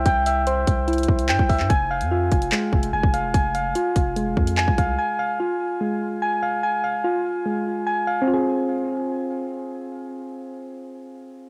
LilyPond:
<<
  \new Staff \with { instrumentName = "Synth keys" } { \time 4/4 \key f \minor \tempo 4 = 146 <e' e'' g''>8 e''8 c''4 e'4 g''8 e''8 | aes''8 f''8 f'4 aes4 aes''8 f''8 | aes''8 f''8 f'4 aes4 aes''8 f''8 | aes''8 f''8 f'4 aes4 aes''8 f''8 |
aes''8 f''8 f'4 aes4 aes''8 f''8 | <c' f' aes'>1~ | <c' f' aes'>1 | }
  \new Staff \with { instrumentName = "808-style bass" } { \clef bass \time 4/4 \key f \minor c,4. c,4 c,8 g,16 c,8 g,16 | f,,8. f,8. f,,8 r8 f,,8 f,,16 f,,8 e,,16 | f,,4 r8 f,,4 f,8. c,8. | r1 |
r1 | r1 | r1 | }
  \new DrumStaff \with { instrumentName = "Drums" } \drummode { \time 4/4 <hh bd>8 hh8 hh8 <hh bd>8 hh32 hh32 hh32 hh32 bd16 hh16 hc16 bd16 <hho bd>16 hc16 | <hh bd>8. hh16 r8 <hh bd>16 hh16 hc8 bd16 hh16 r16 bd16 hh8 | <hh bd>8 hh8 hh8 <hh bd>8 hh8 bd16 hh16 hc16 bd16 <hh bd>8 | r4 r4 r4 r4 |
r4 r4 r4 r4 | r4 r4 r4 r4 | r4 r4 r4 r4 | }
>>